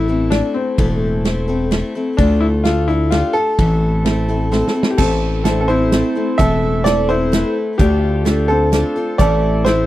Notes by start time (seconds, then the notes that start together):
Already playing: A1 E4
0.08 A3 C4 E4 A4
0.30 A3 C4 D4 E4 A4, snare, ride
0.54 C4
0.78 E1 A2 E3 A3 C4 E4 A4, kick, ride
1.25 A3 C4 E4 A4, snare, ride
1.48 A3 C4 E4 A4
1.71 A3 C4 E4 A4, snare, ride
1.95 A3 C4 E4 A4
2.17 D2 D3 A3 D4 F4 A4, kick, ride
2.41 E4
2.64 A3 D4 F4 A4, snare, ride
2.88 D4 E4 F4 A4
3.11 A3 D4 F4 G4 A4, snare, ride
3.33 D4 F4 A4
3.59 A1 A2 E3 A3 C4 E4 A4, kick, ride
4.04 A3 C4 E4 A4, snare, ride
4.29 A3 C4 E4 A4
4.52 A3 C4 E4 A4 C6, snare
4.68 snare
4.75 A3 C4 E4 A4
4.83 snare
4.91 G4
4.98 A1 A2 E3 A3 C4 E4 A4, kick, crash
5.44 A3 C4 D4 E4 A4 E5, snare, closed hi-hat
5.61 A4
5.68 A3 C4 E4 A4 C5
5.92 A3 C4 E4 A4, snare, closed hi-hat
6.15 A3 C4 E4 A4
6.38 E1 A2 E3 A3 C4 E4 A4 E5, kick, closed hi-hat
6.84 A3 C4 E4 A4 C5 D5, snare, closed hi-hat
7.09 A3 C4 E4 A4 C5
7.32 A3 C4 E4 A4 B4, snare, closed hi-hat
7.78 D2 D3 A3 D4 F4 G4 A4 D5 E5, kick, closed hi-hat
8.00 F5
8.25 A3 D4 F4 A4, snare, closed hi-hat
8.48 C4 D4 F4 A4
8.72 A3 D4 F4 A4, snare, closed hi-hat
8.96 D4 F4 A4
9.18 A1 A2 E3 A3 C4 E4 A4 C5 D5 F5, kick, closed hi-hat
9.40 E5
9.65 A3 C4 E4 A4 C5, snare, closed hi-hat